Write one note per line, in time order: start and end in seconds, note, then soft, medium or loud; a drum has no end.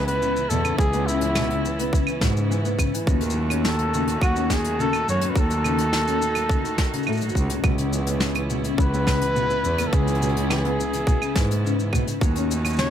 0.00 0.28 C#2 medium
0.00 3.03 C#3 medium
0.00 3.03 B3 medium
0.00 3.03 E4 medium
0.07 0.21 B3 medium
0.07 0.51 B4 loud
0.07 closed hi-hat medium
0.07 shaker soft
0.22 0.35 C#3 medium
0.22 shaker medium
0.36 0.49 E3 medium
0.36 shaker soft
0.49 0.70 E2 medium
0.49 0.63 B2 loud
0.49 0.78 A4 medium
0.49 shaker medium
0.65 0.77 C#3 medium
0.65 claves medium
0.65 shaker medium
0.79 1.86 C#2 medium
0.79 0.92 E3 medium
0.79 1.08 G#4 loud
0.79 kick loud
0.79 shaker medium
0.93 1.07 B3 medium
0.93 closed hi-hat medium
0.93 shaker soft
1.06 1.21 C#3 medium
1.06 2.21 E4 medium
1.06 shaker medium
1.21 1.34 E3 medium
1.21 closed hi-hat medium
1.21 shaker medium
1.35 1.49 B2 medium
1.35 snare medium
1.35 claves medium
1.35 shaker medium
1.50 1.63 C#3 medium
1.50 closed hi-hat medium
1.64 1.77 E3 medium
1.64 shaker medium
1.79 1.92 B3 medium
1.79 closed hi-hat medium
1.79 shaker soft
1.93 2.06 C#3 medium
1.93 kick loud
1.93 shaker medium
2.07 2.21 E3 medium
2.07 claves medium
2.07 shaker soft
2.21 2.71 G#2 medium
2.21 2.35 B2 medium
2.21 kick medium
2.21 snare medium
2.21 shaker medium
2.37 2.49 C#3 medium
2.37 shaker soft
2.51 2.63 E3 medium
2.51 shaker medium
2.64 2.78 B3 medium
2.64 shaker soft
2.79 2.92 C#3 medium
2.79 kick medium
2.79 claves medium
2.79 shaker medium
2.94 3.06 E3 medium
2.94 closed hi-hat medium
2.94 shaker soft
3.07 4.14 D#2 loud
3.07 3.20 C#3 medium
3.07 7.61 D#3 medium
3.07 7.61 A3 medium
3.07 5.34 C#4 medium
3.07 7.61 F#4 medium
3.07 kick loud
3.07 shaker medium
3.21 3.35 D#3 medium
3.21 closed hi-hat medium
3.21 shaker soft
3.30 shaker medium
3.37 3.49 F#3 medium
3.50 3.64 C#4 medium
3.50 closed hi-hat medium
3.50 claves medium
3.50 shaker soft
3.64 3.77 D#3 medium
3.64 4.19 A4 medium
3.64 snare medium
3.64 shaker medium
3.79 3.92 F#3 medium
3.79 closed hi-hat medium
3.94 4.06 C#3 loud
3.94 shaker medium
4.08 4.20 D#3 medium
4.08 closed hi-hat medium
4.08 shaker soft
4.22 4.86 D#2 medium
4.22 4.35 F#3 medium
4.22 4.54 F#4 medium
4.22 kick loud
4.22 claves medium
4.22 shaker medium
4.36 4.50 C#4 medium
4.36 shaker medium
4.50 4.63 D#3 medium
4.50 4.82 G#4 loud
4.50 kick medium
4.50 snare medium
4.50 shaker medium
4.64 4.77 F#3 medium
4.64 closed hi-hat medium
4.64 shaker medium
4.79 4.92 C#3 loud
4.79 5.08 A4 loud
4.79 shaker medium
4.93 5.06 D#3 medium
4.93 claves medium
4.93 shaker soft
5.07 5.27 F#2 medium
5.07 5.20 F#3 medium
5.07 5.31 C#5 loud
5.07 shaker medium
5.21 5.35 C#4 medium
5.21 closed hi-hat medium
5.21 shaker soft
5.30 5.40 B4 medium
5.36 6.43 D#2 loud
5.36 5.49 D#3 medium
5.36 7.62 D#4 medium
5.36 7.37 A4 loud
5.36 kick loud
5.36 shaker medium
5.50 5.63 F#3 medium
5.50 closed hi-hat medium
5.50 shaker soft
5.64 5.77 C#3 medium
5.64 claves medium
5.64 shaker medium
5.78 5.91 D#3 medium
5.78 closed hi-hat medium
5.78 shaker soft
5.93 6.06 F#3 medium
5.93 snare medium
5.93 shaker medium
6.07 6.21 C#4 medium
6.07 closed hi-hat medium
6.07 shaker soft
6.22 6.35 D#3 medium
6.22 shaker medium
6.35 6.49 F#3 medium
6.35 closed hi-hat medium
6.35 claves medium
6.35 shaker soft
6.50 6.63 C#3 loud
6.50 kick loud
6.50 shaker medium
6.64 6.77 D#3 medium
6.64 closed hi-hat soft
6.64 shaker soft
6.78 6.92 D#3 medium
6.78 kick medium
6.78 snare medium
6.93 7.06 C#3 medium
6.93 closed hi-hat medium
6.93 shaker soft
6.98 shaker soft
7.03 claves medium
7.03 shaker soft
7.07 7.27 A2 medium
7.07 7.20 A3 medium
7.07 shaker soft
7.12 shaker soft
7.15 shaker soft
7.17 closed hi-hat soft
7.17 shaker soft
7.22 7.35 F#3 medium
7.22 shaker soft
7.29 shaker soft
7.35 7.55 C#2 medium
7.35 7.50 D#4 medium
7.35 kick medium
7.35 shaker medium
7.50 7.63 C#3 medium
7.50 closed hi-hat medium
7.50 shaker soft
7.63 8.71 C#2 medium
7.63 7.77 B2 medium
7.63 12.17 C#3 medium
7.63 12.17 B3 medium
7.63 12.17 E4 medium
7.63 kick loud
7.63 claves medium
7.63 shaker medium
7.78 7.91 C#3 medium
7.78 closed hi-hat medium
7.78 shaker soft
7.93 8.06 E3 medium
7.93 shaker medium
8.07 8.21 B3 medium
8.07 closed hi-hat medium
8.07 shaker medium
8.20 8.35 C#3 medium
8.20 snare medium
8.20 shaker medium
8.35 8.49 E3 medium
8.35 closed hi-hat medium
8.35 claves medium
8.50 8.63 B2 medium
8.50 shaker medium
8.64 8.77 C#3 medium
8.64 closed hi-hat medium
8.64 shaker soft
8.78 9.43 C#2 medium
8.78 8.91 E3 medium
8.78 9.89 B4 loud
8.78 kick loud
8.78 shaker medium
8.92 9.06 B3 medium
8.92 shaker soft
9.07 9.20 C#3 medium
9.07 kick medium
9.07 snare medium
9.07 claves medium
9.07 shaker medium
9.21 9.34 E3 medium
9.21 closed hi-hat medium
9.21 shaker soft
9.35 9.48 B2 loud
9.35 shaker medium
9.49 9.63 C#3 medium
9.49 shaker soft
9.64 9.84 E2 medium
9.64 9.78 E3 medium
9.64 shaker medium
9.78 9.92 B3 medium
9.78 closed hi-hat medium
9.78 claves medium
9.78 shaker medium
9.87 9.96 A4 medium
9.93 11.00 C#2 loud
9.93 10.06 C#3 medium
9.93 10.51 G#4 loud
9.93 kick loud
9.93 shaker medium
10.07 10.20 E3 medium
10.07 closed hi-hat medium
10.07 shaker medium
10.15 closed hi-hat soft
10.21 10.34 B2 loud
10.21 closed hi-hat soft
10.21 shaker medium
10.29 closed hi-hat soft
10.35 10.48 C#3 medium
10.35 closed hi-hat medium
10.50 10.63 E3 medium
10.50 11.90 G#4 medium
10.50 snare medium
10.50 claves medium
10.50 shaker medium
10.65 10.78 B3 medium
10.65 closed hi-hat medium
10.79 10.92 C#3 medium
10.79 shaker medium
10.93 11.06 E3 medium
10.93 closed hi-hat medium
10.93 shaker soft
11.07 11.20 B2 loud
11.07 kick loud
11.07 shaker medium
11.21 11.34 C#3 medium
11.21 claves medium
11.21 shaker soft
11.36 11.86 G#2 medium
11.36 11.49 E3 medium
11.36 kick loud
11.36 snare medium
11.36 shaker medium
11.50 11.64 B3 medium
11.50 closed hi-hat medium
11.50 shaker soft
11.64 11.77 C#3 medium
11.64 shaker medium
11.79 11.92 E3 medium
11.79 shaker soft
11.93 12.06 B2 loud
11.93 kick medium
11.93 claves medium
11.93 shaker medium
12.07 12.20 C#3 medium
12.07 closed hi-hat medium
12.07 shaker medium
12.21 12.90 D#2 medium
12.21 12.90 D#3 medium
12.21 12.34 F#3 medium
12.21 12.90 A3 medium
12.21 12.90 C#4 medium
12.21 12.90 F#4 medium
12.21 kick loud
12.21 shaker medium
12.36 12.49 C#4 medium
12.36 closed hi-hat medium
12.36 shaker soft
12.50 12.63 D#3 medium
12.50 shaker medium
12.65 12.77 F#3 medium
12.65 closed hi-hat medium
12.65 claves medium
12.65 shaker medium
12.70 shaker soft
12.73 shaker soft
12.76 12.90 C#3 loud
12.76 snare medium
12.76 shaker soft
12.80 12.90 C#5 loud
12.80 shaker medium